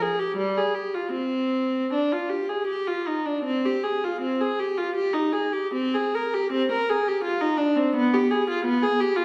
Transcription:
0.02 G#4
0.19 G4
0.37 G3
0.58 G#4
0.75 G4
0.95 F4
1.12 C4
1.93 D4
2.12 F4
2.30 G4
2.49 G#4
2.67 G4
2.88 F4
3.07 D#4
3.25 D4
3.44 C4
3.65 G4
3.83 G#4
4.04 F4
4.21 C4
4.41 G#4
4.59 G4
4.78 F4
4.96 G4
5.13 D#4
5.33 G#4
5.53 G4
5.74 C4
5.94 G#4
6.15 A#4
6.34 G4
6.52 C4
6.72 A#4
6.90 G#4
7.08 G4
7.24 F4
7.41 D#4
7.58 D4
7.76 C4
7.96 B3
8.14 G4
8.31 G#4
8.50 F4
8.65 B3
8.83 G#4
9.01 G4
9.16 F4

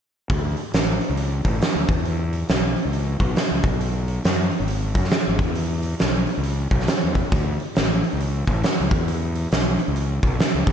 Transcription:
0.30 D2, kick, open hi-hat
0.57 open hi-hat
0.74 A1, snare, open hi-hat
1.01 open hi-hat
1.10 C#2
1.17 open hi-hat
1.45 A1, kick, open hi-hat
1.62 snare, open hi-hat
1.75 D2
1.89 E2, kick, open hi-hat
2.05 open hi-hat
2.33 open hi-hat
2.49 B1, snare, open hi-hat
2.76 open hi-hat
2.85 C#2
2.93 open hi-hat
3.20 B1, kick, open hi-hat
3.36 snare, open hi-hat
3.51 C#2
3.64 B1, kick, open hi-hat
3.81 open hi-hat
4.08 open hi-hat
4.25 F#2, snare, open hi-hat
4.51 open hi-hat
4.60 G#1
4.68 open hi-hat
4.95 F#2, kick, open hi-hat
5.04 snare
5.11 snare, open hi-hat
5.27 G#1
5.39 E2, kick, open hi-hat
5.55 open hi-hat
5.83 open hi-hat
5.99 B1, snare, open hi-hat
6.27 open hi-hat
6.38 C#2
6.44 open hi-hat
6.71 B1, kick, open hi-hat
6.80 snare
6.88 snare, open hi-hat
7.04 E2
7.15 kick, open hi-hat
7.32 D2, kick, open hi-hat
7.60 open hi-hat
7.76 A1, snare, open hi-hat
8.04 open hi-hat
8.13 C#2
8.21 open hi-hat
8.47 A1, kick, open hi-hat
8.64 snare, open hi-hat
8.80 C#2
8.91 E2, kick, open hi-hat
9.08 open hi-hat
9.35 open hi-hat
9.52 B1, snare, open hi-hat
9.79 open hi-hat
9.88 C#2
9.96 open hi-hat
10.23 B1, kick, open hi-hat
10.40 snare, open hi-hat
10.55 C#2
10.67 B1, kick, open hi-hat

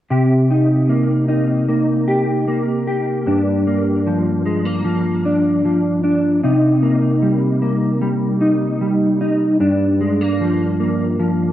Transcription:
0.10 C3 G4
0.50 D#4
0.89 A#3
1.28 D#4
1.68 A#3
2.08 G4
2.48 A#3
2.88 G4
3.26 G2 D4
3.67 A#3
4.07 F3
4.45 G#3
4.65 A#3
4.84 F3
5.25 D4
5.65 F3
6.04 D4
6.43 C3 D#4
6.82 A#3
7.22 G3
7.62 A#3
8.02 G3
8.41 D#4
8.81 G3
9.21 D#4
9.60 G2 D4
10.01 G#3
10.21 A#3
10.41 F3
10.80 A#3
11.19 F3

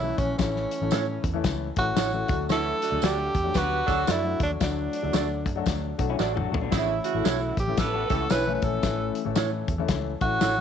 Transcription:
Already playing: B1 E4
0.02 E3 A3 C#4 E4 A4
0.17 A#1 C#4, kick, closed hi-hat
0.38 A1 E3 A3 C#4 E4 A4, kick, snare, closed hi-hat, tambourine
0.56 snare
0.71 closed hi-hat
0.81 A1 E3 A3 C#4 E4 A4
0.91 A2 E4 A4 C#5, snare, closed hi-hat, tambourine
1.24 E2, kick, closed hi-hat
1.33 E3 A3 C#4 E4 A4
1.44 C#2, kick, snare, closed hi-hat, tambourine
1.76 A1 E3 A3 C#4 E4 F#4 A4, kick, closed hi-hat
1.96 A1 E4 A4 C#5, snare, closed hi-hat, tambourine
2.12 E3 A3 C#4 E4 A4
2.28 D2 F#3 A3 D4 F#4 A4, kick, closed hi-hat
2.49 E3 C#4 E4 A4, snare, closed hi-hat, tambourine
2.82 D3 A3 F#4, closed hi-hat
2.91 D2 F#3 A3 D4 F#4 G#4
2.98 D2 A4, tambourine
3.02 F#4 G4 A4 D5, snare, closed hi-hat
3.35 E2, kick, closed hi-hat
3.44 F#3 A3 D4 F#4 A4
3.54 D2 B3 F#4 G4 B4, kick, snare, closed hi-hat, tambourine
3.86 D2 F#3 A3 D4 F#4 A4, kick, closed hi-hat
4.07 F#2 E4 F#4 A4 D5, snare, closed hi-hat, tambourine
4.23 F#3 A3 D4 F#4 A4
4.40 D#2 D4, kick, closed hi-hat
4.60 D2 F#3 A3 D4 F#4 A4, kick, snare, closed hi-hat, tambourine
4.93 closed hi-hat
5.03 D2 F#3 A3 D4 F#4 A4
5.13 D2 F#4 A4 D5, snare, closed hi-hat, tambourine
5.46 F#2, kick, closed hi-hat
5.56 F#3 A3 D4 F#4 A4
5.66 D2, kick, snare, closed hi-hat, tambourine
5.98 B1 F#3 A3 D4 F#4 A4, kick, closed hi-hat
6.10 C#4 E4
6.19 A1 D4 F#4 A4 D5, snare, tambourine
6.35 F#3 A3 D4 F#4 A4, mid tom
6.52 A#1 D4 F#4, floor tom
6.62 B3 D4
6.71 A1 C#3 E3 A3 C#4 E4 A4, kick, snare, closed hi-hat, tambourine
6.75 E4
7.03 C#3 A3 F#4, closed hi-hat
7.14 A1 E3 A3 C#4 E4 A4
7.25 B1 E4 A4 C#5, snare, closed hi-hat, tambourine
7.57 A1 G4, kick, closed hi-hat
7.67 E3 A3 C#4 E4 A4
7.77 A1 B3 G4 A4 B4, kick, snare, closed hi-hat, tambourine
7.94 F#4 A4
8.10 C#2 E3 A3 C#4 E4 G4 A4, kick, closed hi-hat
8.21 F#4
8.30 B1 C#4 E4 A4 B4 C#5, snare, closed hi-hat, tambourine
8.47 E3 A3 C#4 E4 A4
8.54 B4
8.62 A#1 A4, kick, closed hi-hat
8.82 A1 E3 A3 C#4 E4 A4, kick, snare, closed hi-hat, tambourine
9.15 closed hi-hat
9.25 A1 E3 A3 C#4 E4 A4
9.36 A2 E4 A4 C#5, snare, closed hi-hat, tambourine
9.68 E2, kick, closed hi-hat
9.78 E3 A3 C#4 E4 A4
9.88 C#2, kick, snare, closed hi-hat, tambourine
10.20 A1 E3 A3 C#4 E4 F#4 A4, kick, closed hi-hat
10.41 A1 E4 A4 C#5, snare, closed hi-hat, tambourine
10.58 E3

